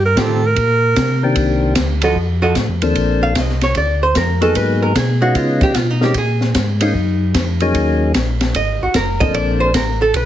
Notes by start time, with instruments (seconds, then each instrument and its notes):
Already playing: tonewheel organ G2
0.05 alto saxophone A#4
0.16 tonewheel organ A2, hollow-body jazz guitar D#3 C4 F4 G4, kick, snare, hi-hat pedal, ride
0.21 alto saxophone A4
0.46 alto saxophone A#4
0.56 tonewheel organ A#2, kick, ride
0.96 tonewheel organ C3, kick, snare, hi-hat pedal, ride
1.23 tonewheel organ D#3 A#3 C4 D4 G4
1.35 tonewheel organ C2, kick, ride
1.75 tonewheel organ D2, kick, snare, hi-hat pedal, ride
2.02 hollow-body jazz guitar F3 F#4 A4 D#5, ride
2.16 tonewheel organ F2, kick
2.42 hollow-body jazz guitar F3 F#4 A4 D#5
2.55 tonewheel organ A2, kick, snare, hi-hat pedal, ride
2.68 tonewheel organ F2
2.82 tonewheel organ D#2 F3 A#3 C4 D4 A4, ride
2.95 tonewheel organ A#1, kick, ride
3.23 hollow-body jazz guitar F5
3.35 tonewheel organ C2, hollow-body jazz guitar D#5, kick, snare, hi-hat pedal, ride
3.49 snare
3.61 hollow-body jazz guitar C#5, snare, ride
3.75 tonewheel organ D2, hollow-body jazz guitar D5, kick, ride
4.03 hollow-body jazz guitar C5
4.15 tonewheel organ F2, hollow-body jazz guitar A#4, kick, snare, hi-hat pedal, ride
4.41 tonewheel organ F#3 A#3 B3 D#4 G#4, hollow-body jazz guitar A4, ride
4.55 tonewheel organ G#2, hollow-body jazz guitar B4, kick, ride
4.82 hollow-body jazz guitar A#4
4.95 tonewheel organ B2, hollow-body jazz guitar G#4, kick, snare, hi-hat pedal, ride
5.21 tonewheel organ G#3 B3 C#4 D#4 F4, hollow-body jazz guitar F#4
5.35 tonewheel organ C#3, hollow-body jazz guitar F4, kick, ride
5.61 hollow-body jazz guitar G4, kick, ride
5.74 tonewheel organ B2, hollow-body jazz guitar F4, kick, snare, hi-hat pedal, ride
5.90 hollow-body jazz guitar D#4
6.01 tonewheel organ G#3 A#3 C4 C#4 D#4, hollow-body jazz guitar G4, snare
6.14 tonewheel organ A#2, hollow-body jazz guitar G#4, kick, ride
6.41 snare
6.55 tonewheel organ G#2, kick, snare, hi-hat pedal, ride
6.81 tonewheel organ G#3 A#3 C4 C#4 F4, hollow-body jazz guitar D#4, ride
6.94 tonewheel organ F#2, kick
7.34 tonewheel organ F2, kick, snare, hi-hat pedal, ride
7.60 tonewheel organ F#3 A#3 C#4 D#4 G#4, ride
7.74 tonewheel organ D#2, kick, ride
8.14 tonewheel organ A#1, kick, snare, hi-hat pedal, ride
8.41 snare, ride
8.54 tonewheel organ G#1, hollow-body jazz guitar D#5, kick, ride
8.81 tonewheel organ G#1, hollow-body jazz guitar F#4
8.94 tonewheel organ F#1, hollow-body jazz guitar A#4, kick, snare, hi-hat pedal, ride
9.20 tonewheel organ F3 A#3 C4 D4 A4, hollow-body jazz guitar D#5, kick, ride
9.34 tonewheel organ A#1, hollow-body jazz guitar D5, kick, ride
9.60 hollow-body jazz guitar C5
9.74 tonewheel organ A1, hollow-body jazz guitar A#4, kick, snare, hi-hat pedal, ride
10.02 hollow-body jazz guitar A4
10.13 tonewheel organ B1, hollow-body jazz guitar B4, kick, ride